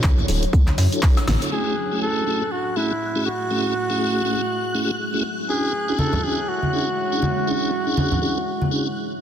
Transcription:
0.00 0.12 D2 medium
0.00 1.48 F#3 medium
0.00 0.26 D4 medium
0.00 1.50 D4 medium
0.00 0.26 E4 medium
0.00 0.26 F#4 medium
0.00 0.26 A4 medium
0.00 0.26 C#5 medium
0.00 1.48 C#5 medium
0.00 kick loud
0.00 snare loud
0.00 clap loud
0.00 high conga medium
0.04 closed hi-hat medium
0.04 shaker soft
0.18 low conga medium
0.18 shaker soft
0.28 0.45 D1 loud
0.28 0.45 D4 medium
0.28 0.45 E4 medium
0.28 0.45 F#4 medium
0.28 0.45 A4 medium
0.28 0.45 C#5 medium
0.28 closed hi-hat medium
0.28 open hi-hat loud
0.28 shaker medium
0.43 closed hi-hat medium
0.43 shaker soft
0.53 0.70 D2 medium
0.53 kick loud
0.53 closed hi-hat medium
0.53 shaker soft
0.67 snare soft
0.67 clap soft
0.67 closed hi-hat medium
0.67 high conga medium
0.67 shaker soft
0.78 0.87 F#2 loud
0.78 snare loud
0.78 closed hi-hat medium
0.78 open hi-hat loud
0.78 shaker medium
0.92 1.01 D4 medium
0.92 1.01 E4 medium
0.92 1.01 F#4 medium
0.92 1.01 A4 medium
0.92 1.01 C#5 loud
0.92 closed hi-hat soft
0.92 closed hi-hat medium
0.92 shaker soft
1.03 1.19 D4 medium
1.03 1.19 E4 medium
1.03 1.19 F#4 medium
1.03 1.19 A4 medium
1.03 1.19 C#5 medium
1.03 kick loud
1.03 clap loud
1.03 closed hi-hat medium
1.03 open hi-hat medium
1.03 shaker soft
1.17 snare medium
1.17 closed hi-hat medium
1.17 high woodblock medium
1.17 shaker soft
1.28 1.36 A1 loud
1.28 snare medium
1.28 open hi-hat loud
1.28 high conga medium
1.28 high woodblock medium
1.28 shaker medium
1.41 1.50 D4 medium
1.41 1.50 E4 medium
1.41 1.50 F#4 medium
1.41 1.50 A4 medium
1.41 1.50 C#5 loud
1.41 closed hi-hat medium
1.41 shaker soft
1.52 1.76 A3 medium
1.52 5.21 A3 medium
1.52 1.76 C#4 medium
1.52 1.76 E4 medium
1.52 1.76 F#4 medium
1.52 8.92 F#4 medium
1.52 1.98 G#4 loud
1.52 1.76 G#4 medium
1.52 5.21 E5 medium
1.52 3.49 G#5 medium
1.52 8.96 F#6 medium
1.52 crash medium
1.92 2.24 A3 medium
1.92 2.24 C#4 medium
1.92 2.24 E4 medium
1.92 2.24 F#4 medium
1.92 2.24 G#4 medium
2.02 2.53 A4 loud
2.27 2.43 A3 medium
2.27 2.43 C#4 medium
2.27 2.43 E4 medium
2.27 2.43 F#4 medium
2.27 2.43 G#4 medium
2.51 2.78 F#4 medium
2.76 2.92 A3 medium
2.76 2.92 C#4 medium
2.76 2.93 E4 medium
2.76 3.25 E4 medium
2.76 2.93 F#4 medium
2.76 2.93 G#4 medium
3.15 3.28 A3 medium
3.15 3.28 C#4 medium
3.15 3.28 E4 medium
3.15 3.28 F#4 medium
3.15 3.28 G#4 medium
3.26 5.20 F#4 medium
3.51 3.74 A3 medium
3.51 3.74 C#4 medium
3.51 3.74 E4 medium
3.51 3.74 F#4 medium
3.51 3.74 G#4 medium
3.51 5.23 G#4 medium
3.90 4.23 A3 medium
3.90 4.23 C#4 medium
3.90 4.23 E4 medium
3.90 4.23 F#4 medium
3.90 4.23 G#4 medium
4.25 4.41 A3 medium
4.25 4.41 C#4 medium
4.25 4.41 E4 medium
4.25 4.41 F#4 medium
4.25 4.41 G#4 medium
4.75 4.91 A3 medium
4.75 4.91 C#4 medium
4.75 4.91 E4 medium
4.75 4.91 F#4 medium
4.75 4.91 G#4 medium
5.14 5.23 A3 medium
5.14 5.23 C#4 medium
5.14 5.23 E4 medium
5.14 5.23 F#4 medium
5.14 5.23 G#4 medium
5.24 8.92 G#3 medium
5.24 8.92 E4 medium
5.24 8.92 C#5 medium
5.24 8.92 E5 medium
5.49 5.73 C#4 medium
5.49 5.73 D4 medium
5.49 5.73 E4 medium
5.49 5.73 F#4 medium
5.49 5.73 G#4 medium
5.49 6.00 G#4 loud
5.88 6.21 C#4 medium
5.88 6.21 D4 medium
5.88 6.21 E4 medium
5.88 6.21 F#4 medium
5.88 6.21 G#4 medium
5.99 6.25 A4 loud
5.99 high conga medium
6.13 low conga medium
6.23 6.40 C#4 medium
6.23 6.40 D4 medium
6.23 6.40 E4 medium
6.23 6.40 F#4 medium
6.23 6.50 G#4 loud
6.23 6.40 G#4 medium
6.48 8.96 F#4 loud
6.63 high conga medium
6.73 6.89 C#4 medium
6.73 6.89 D4 medium
6.73 6.89 E4 medium
6.73 6.89 F#4 medium
6.73 6.89 G#4 medium
7.12 7.25 C#4 medium
7.12 7.25 D4 medium
7.12 7.25 E4 medium
7.12 7.25 F#4 medium
7.12 7.25 G#4 medium
7.22 high conga medium
7.47 7.71 C#4 medium
7.47 7.71 D4 medium
7.47 7.71 E4 medium
7.47 7.71 F#4 medium
7.47 7.71 G#4 medium
7.87 8.19 C#4 medium
7.87 8.19 D4 medium
7.87 8.19 E4 medium
7.87 8.19 F#4 medium
7.87 8.19 G#4 medium
7.97 high conga medium
8.12 low conga medium
8.22 8.38 C#4 medium
8.22 8.38 D4 medium
8.22 8.38 E4 medium
8.22 8.38 F#4 medium
8.22 8.38 G#4 medium
8.61 high conga medium
8.71 8.88 C#4 medium
8.71 8.88 D4 medium
8.71 8.88 E4 medium
8.71 8.88 F#4 medium
8.71 8.88 G#4 medium

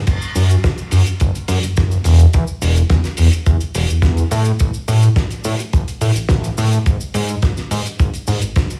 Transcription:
0.07 0.17 F#1 loud
0.07 kick loud
0.07 closed hi-hat medium
0.07 crash medium
0.07 cabasa medium
0.22 cabasa soft
0.35 0.56 F#2 medium
0.35 open hi-hat loud
0.35 cabasa medium
0.49 closed hi-hat medium
0.49 cabasa medium
0.64 0.74 F#1 medium
0.64 kick loud
0.64 snare loud
0.64 closed hi-hat medium
0.64 cabasa medium
0.78 closed hi-hat soft
0.78 cabasa soft
0.91 1.02 F#2 medium
0.91 open hi-hat loud
0.91 cabasa medium
1.07 closed hi-hat medium
1.07 cabasa medium
1.20 1.31 F#1 medium
1.20 kick loud
1.20 closed hi-hat medium
1.20 cabasa medium
1.35 closed hi-hat soft
1.35 cabasa soft
1.48 1.59 F#2 medium
1.48 open hi-hat loud
1.48 cabasa medium
1.63 1.74 F#1 soft
1.63 closed hi-hat medium
1.63 cabasa medium
1.77 1.98 F#1 medium
1.77 kick loud
1.77 snare loud
1.77 closed hi-hat medium
1.77 cabasa medium
1.91 closed hi-hat medium
1.91 cabasa soft
2.04 2.26 E1 loud
2.04 open hi-hat loud
2.04 cabasa medium
2.19 closed hi-hat medium
2.19 cabasa medium
2.33 2.44 E2 loud
2.33 kick loud
2.33 closed hi-hat medium
2.33 cabasa medium
2.47 cabasa soft
2.62 2.82 E1 medium
2.62 open hi-hat loud
2.62 cabasa medium
2.76 closed hi-hat medium
2.76 cabasa soft
2.90 3.00 E2 medium
2.90 kick loud
2.90 snare loud
2.90 closed hi-hat medium
2.90 cabasa medium
3.04 snare soft
3.04 closed hi-hat medium
3.04 cabasa soft
3.17 3.29 E1 medium
3.17 open hi-hat loud
3.17 cabasa medium
3.32 closed hi-hat medium
3.32 cabasa soft
3.46 3.57 E2 medium
3.46 kick loud
3.46 closed hi-hat medium
3.46 cabasa medium
3.61 closed hi-hat soft
3.61 cabasa soft
3.75 3.85 E1 medium
3.75 open hi-hat loud
3.75 cabasa medium
3.89 4.00 E2 soft
3.89 closed hi-hat medium
3.89 cabasa medium
4.02 4.23 E2 medium
4.02 kick loud
4.02 snare loud
4.02 closed hi-hat medium
4.02 cabasa medium
4.17 closed hi-hat medium
4.17 cabasa soft
4.31 4.52 A2 loud
4.31 open hi-hat loud
4.31 cabasa medium
4.45 closed hi-hat medium
4.45 cabasa medium
4.59 4.70 A1 loud
4.59 kick loud
4.59 closed hi-hat medium
4.59 cabasa medium
4.74 cabasa soft
4.88 5.09 A2 medium
4.88 open hi-hat loud
4.88 cabasa loud
5.02 closed hi-hat medium
5.02 cabasa soft
5.16 5.27 A1 medium
5.16 kick loud
5.16 snare loud
5.16 closed hi-hat medium
5.16 cabasa medium
5.31 closed hi-hat medium
5.31 cabasa soft
5.44 5.55 A2 medium
5.44 open hi-hat loud
5.44 cabasa medium
5.59 closed hi-hat medium
5.59 cabasa soft
5.73 5.84 A1 medium
5.73 kick loud
5.73 closed hi-hat medium
5.73 cabasa medium
5.88 closed hi-hat medium
5.88 cabasa soft
6.01 6.12 A2 medium
6.01 open hi-hat loud
6.01 cabasa medium
6.15 6.27 A1 soft
6.15 closed hi-hat medium
6.15 cabasa medium
6.29 6.50 A1 medium
6.29 kick loud
6.29 snare loud
6.29 closed hi-hat medium
6.29 cabasa medium
6.44 closed hi-hat medium
6.44 cabasa soft
6.58 6.78 A2 loud
6.58 open hi-hat loud
6.58 cabasa medium
6.73 closed hi-hat medium
6.73 cabasa soft
6.86 6.97 G#1 loud
6.86 kick loud
6.86 closed hi-hat medium
6.86 cabasa medium
7.01 cabasa soft
7.14 7.35 G#2 medium
7.14 open hi-hat loud
7.14 cabasa medium
7.29 closed hi-hat medium
7.29 cabasa soft
7.42 7.53 G#1 medium
7.42 kick loud
7.42 snare loud
7.42 closed hi-hat medium
7.42 cabasa medium
7.57 snare soft
7.57 closed hi-hat soft
7.57 cabasa soft
7.71 7.81 G#2 medium
7.71 open hi-hat loud
7.71 cabasa medium
7.86 closed hi-hat medium
7.86 cabasa medium
8.00 8.10 G#1 medium
8.00 kick loud
8.00 closed hi-hat medium
8.00 cabasa medium
8.14 closed hi-hat soft
8.14 cabasa soft
8.27 8.38 G#2 medium
8.27 open hi-hat loud
8.27 cabasa medium
8.42 8.53 G#1 soft
8.42 closed hi-hat medium
8.42 cabasa medium
8.56 8.66 G#1 medium
8.56 kick loud
8.56 snare loud
8.56 closed hi-hat medium
8.56 cabasa medium
8.70 closed hi-hat soft
8.70 cabasa soft

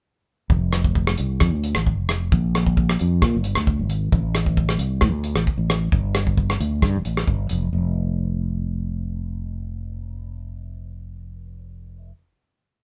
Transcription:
0.50 1.14 F1 medium
0.50 kick medium
0.73 cross-stick medium
0.73 closed hi-hat soft
0.84 kick medium
0.95 kick medium
1.07 cross-stick medium
1.18 1.40 C2 medium
1.18 closed hi-hat soft
1.40 1.53 F2 medium
1.40 kick medium
1.40 cross-stick medium
1.53 1.74 D2 medium
1.64 closed hi-hat soft
1.75 2.00 A1 medium
1.75 cross-stick medium
1.87 kick medium
2.00 2.30 F1 medium
2.09 cross-stick medium
2.09 closed hi-hat medium
2.32 2.96 A#1 medium
2.32 kick medium
2.55 cross-stick medium
2.55 closed hi-hat soft
2.67 kick medium
2.77 kick medium
2.89 cross-stick medium
2.99 3.21 F2 medium
2.99 closed hi-hat soft
3.22 3.36 A#2 medium
3.22 kick medium
3.22 cross-stick medium
3.35 3.55 G1 medium
3.44 closed hi-hat soft
3.55 3.81 D2 medium
3.55 cross-stick medium
3.67 kick medium
3.79 4.10 G#1 medium
3.90 closed hi-hat soft
4.12 4.76 A1 medium
4.12 kick medium
4.35 cross-stick medium
4.35 closed hi-hat soft
4.46 kick medium
4.57 kick medium
4.69 cross-stick medium
4.78 5.00 C2 medium
4.78 closed hi-hat soft
5.01 5.12 A2 medium
5.01 kick medium
5.01 cross-stick medium
5.12 5.34 D2 medium
5.24 closed hi-hat medium
5.35 5.46 A1 medium
5.35 cross-stick medium
5.47 kick medium
5.58 5.89 A1 medium
5.70 cross-stick medium
5.70 closed hi-hat medium
5.92 6.56 G1 medium
5.92 kick medium
6.15 cross-stick medium
6.15 closed hi-hat soft
6.27 kick medium
6.38 kick medium
6.50 cross-stick medium
6.60 6.81 D2 medium
6.60 closed hi-hat soft
6.82 6.97 G2 medium
6.82 kick medium
6.82 cross-stick medium
6.95 7.05 E1 medium
7.05 7.26 A1 medium
7.05 closed hi-hat soft
7.17 cross-stick medium
7.27 7.48 G1 medium
7.27 kick medium
7.49 7.71 F1 medium
7.49 closed hi-hat soft
7.73 12.11 F1 medium

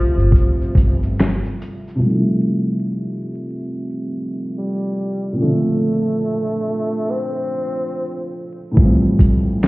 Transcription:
0.00 1.94 C3 medium
0.00 1.14 F3 loud
0.00 1.96 F3 medium
0.00 1.97 G3 medium
0.00 1.99 A3 medium
0.00 2.01 E4 medium
0.18 0.32 G1 medium
0.18 shaker soft
0.32 kick medium
0.32 shaker medium
0.61 shaker soft
0.75 1.40 G1 medium
0.75 kick medium
0.75 closed hi-hat medium
0.75 shaker soft
1.03 shaker medium
1.19 finger snap medium
1.19 snare loud
1.19 shaker medium
1.45 shaker soft
1.62 closed hi-hat medium
1.62 shaker soft
1.88 shaker soft
1.96 5.32 C3 medium
1.96 5.34 F3 medium
2.02 5.36 G3 medium
2.02 5.37 A3 medium
2.08 2.13 D#4 medium
2.15 5.42 E4 medium
4.58 5.37 G3 medium
5.33 8.70 A#2 medium
5.33 5.46 C#3 soft
5.39 8.75 D3 medium
5.39 8.73 F3 medium
5.39 8.75 A3 medium
5.39 7.12 A3 medium
5.45 8.76 C4 medium
7.10 8.36 C4 loud
8.71 9.68 A2 medium
8.71 9.68 E3 medium
8.77 9.68 F3 medium
8.77 kick loud
8.81 9.68 G3 medium
8.81 9.68 C4 medium
9.19 kick medium
9.19 closed hi-hat medium
9.63 finger snap medium
9.63 snare loud

